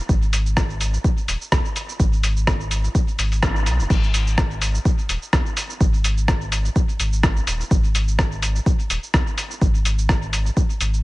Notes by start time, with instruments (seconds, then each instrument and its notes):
0.09 sub bass G#1, kick, shaker
0.22 shaker
0.33 open hi-hat, shaker
0.46 shaker
0.57 kick, cross-stick, shaker
0.70 shaker
0.81 open hi-hat, shaker
0.94 shaker
1.04 kick, shaker
1.18 shaker
1.28 sub bass D#1, open hi-hat, shaker
1.41 shaker
1.52 sub bass B1, kick, cross-stick, shaker
1.65 shaker
1.76 open hi-hat, shaker
1.89 shaker
2.00 sub bass G#1, kick, shaker
2.13 shaker
2.23 open hi-hat, shaker
2.37 shaker
2.47 kick, cross-stick, shaker
2.60 shaker
2.71 open hi-hat, shaker
2.84 shaker
2.95 kick, shaker
3.08 shaker
3.19 sub bass G#1, open hi-hat, shaker
3.32 open hi-hat, shaker
3.42 kick, cross-stick, shaker
3.56 shaker
3.66 sub bass B1, open hi-hat, shaker
3.79 sub bass D#1, shaker
3.90 sub bass G#1, kick, crash, shaker
4.03 shaker
4.14 open hi-hat, shaker
4.27 shaker
4.38 kick, cross-stick, shaker
4.51 shaker
4.62 open hi-hat, shaker
4.75 shaker
4.85 kick, shaker
4.99 shaker
5.09 sub bass D#1, open hi-hat, shaker
5.22 shaker
5.33 sub bass B1, kick, cross-stick, shaker
5.46 shaker
5.57 open hi-hat, shaker
5.70 shaker
5.81 sub bass G#1, kick, shaker
5.94 shaker
6.04 open hi-hat, shaker
6.17 shaker
6.28 kick, cross-stick, shaker
6.41 shaker
6.52 open hi-hat, shaker
6.65 shaker
6.76 kick, shaker
6.89 shaker
7.00 sub bass G#1, open hi-hat, shaker
7.13 shaker
7.23 kick, cross-stick, shaker
7.37 shaker
7.47 sub bass D#1, open hi-hat, shaker
7.60 shaker
7.71 sub bass G#1, kick, shaker
7.84 shaker
7.95 open hi-hat, shaker
8.08 shaker
8.19 kick, cross-stick, shaker
8.32 shaker
8.42 open hi-hat, shaker
8.56 shaker
8.66 kick, shaker
8.79 shaker
8.90 sub bass D#1, open hi-hat, shaker
9.03 shaker
9.14 sub bass B1, kick, cross-stick, shaker
9.27 shaker
9.38 open hi-hat, shaker
9.51 shaker
9.61 sub bass G#1, kick, shaker
9.75 shaker
9.85 open hi-hat, shaker
9.98 shaker
10.09 kick, cross-stick, shaker
10.22 shaker
10.33 open hi-hat, shaker
10.46 shaker
10.57 kick, shaker
10.70 shaker
10.81 sub bass G#1, open hi-hat, shaker
10.94 shaker